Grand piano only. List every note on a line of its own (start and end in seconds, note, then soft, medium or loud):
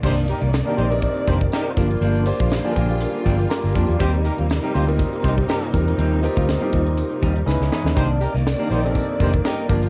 0.90 1.48 C4 medium
0.90 1.48 D4 medium
0.90 1.48 D#4 medium
0.90 1.49 G4 medium
0.90 1.49 A#4 loud
1.76 2.17 A#3 medium
1.76 2.17 D4 medium
1.76 2.17 F4 medium
1.76 2.17 G4 medium
1.76 2.18 A#4 medium
2.25 2.51 A#3 loud
2.25 2.51 D4 loud
2.25 2.51 F4 medium
2.25 2.51 G4 medium
2.25 2.51 C5 loud
2.64 3.22 A#3 medium
2.64 3.22 D4 medium
2.64 3.22 F4 medium
2.64 3.22 G4 medium
2.64 2.70 G#4 medium
2.71 3.25 A#4 loud
2.76 2.99 G5 medium
3.01 3.24 F5 medium
3.27 3.49 G5 medium
3.49 3.67 A#3 medium
3.49 3.67 D4 medium
3.49 3.67 F4 medium
3.49 3.68 G4 medium
3.49 3.68 A#4 loud
3.49 3.73 A#5 medium
3.75 4.00 A#3 medium
3.75 4.00 D4 medium
3.75 4.00 F4 medium
3.75 4.00 G4 medium
3.75 4.00 A#4 medium
3.75 3.98 C6 medium
4.87 5.45 C4 medium
4.87 5.45 D#4 medium
4.87 5.45 F4 medium
4.87 5.45 G4 medium
4.87 5.45 A#4 medium
5.72 6.07 C4 medium
5.72 6.07 D#4 medium
5.72 6.07 F4 medium
5.72 6.07 G4 medium
5.72 6.07 A#4 medium
6.23 6.48 C4 loud
6.23 6.48 D#4 medium
6.23 6.48 F4 loud
6.23 6.48 G4 loud
6.23 6.49 A#4 loud
6.61 7.19 C4 medium
6.61 7.19 D#4 medium
6.61 7.19 F4 medium
6.61 7.19 G4 medium
6.61 7.19 A#4 loud
7.46 7.64 C#4 medium
7.46 7.64 D#4 medium
7.46 7.64 E4 medium
7.46 7.64 G#4 medium
7.46 7.64 B4 loud
7.72 7.96 C#4 medium
7.72 7.96 D#4 medium
7.72 7.97 E4 medium
7.72 7.97 G#4 medium
7.72 7.97 B4 medium
8.83 9.41 C4 medium
8.83 9.41 D4 medium
8.83 9.42 D#4 medium
8.83 9.42 G4 medium
8.83 8.90 A4 medium
8.91 9.45 A#4 loud
9.69 9.89 A#3 medium
9.69 9.89 D4 medium
9.69 9.89 F4 medium
9.69 9.89 G4 medium
9.69 9.89 A#4 loud